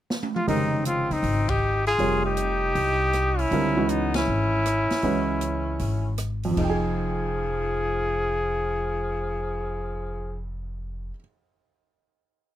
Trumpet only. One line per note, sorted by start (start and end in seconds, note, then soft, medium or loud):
0.36 0.47 F4 medium
0.49 0.83 D#4 medium
0.87 1.14 F4 medium
1.13 1.51 D#4 medium
1.49 1.87 G4 medium
1.88 2.22 G#4 loud
2.26 3.41 G4 loud
3.40 3.91 E4 medium
3.90 4.15 D#4 medium
4.17 6.16 E4 medium
6.59 10.41 G#4 medium